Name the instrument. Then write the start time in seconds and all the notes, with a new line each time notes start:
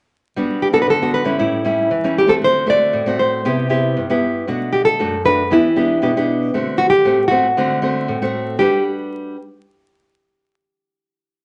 nylon-string guitar
0.36 G3 B3 D4 F#4
0.62 G4
0.72 B3 D4 F#4 A4
0.82 B4
0.87 D3 A4
1.02 B3 D4 F#4
1.14 B4
1.24 G3 C#4 E4
1.39 A2 E4
1.64 G3 C#4 E4
1.91 E3
2.04 G3 C#4 E4
2.18 G4
2.27 A3 C4 F#4 A4
2.42 D3 C5
2.66 A3 C4 F#4 D5
2.93 A2
3.06 A3 C4 F#4
3.19 C5
3.45 C3 B3 E4 G4
3.69 B3 E4 G4
3.97 G2
4.10 B3 E4 G4
4.47 B2 A3 D4 F#4
4.73 G4
4.85 A4
4.99 F#2 A3 D4 F#4
5.25 A3 D4 F#4 B4
5.50 E3 B3 D4 E4 G4
5.76 B3 D4 G4
6.02 B2 B3 D4 G4
6.17 B3 D4 G4
6.54 D3 A3 C4 F#4
6.78 F#4
6.90 G4
7.05 A2 A3 C4 F#4
7.28 A3 C4 F#4
7.57 D3 A3 C4 F#4
7.82 A3 C4 F#4
8.08 A2
8.22 A3 C4 F#4
8.59 G3 D4 F#4 G4 B4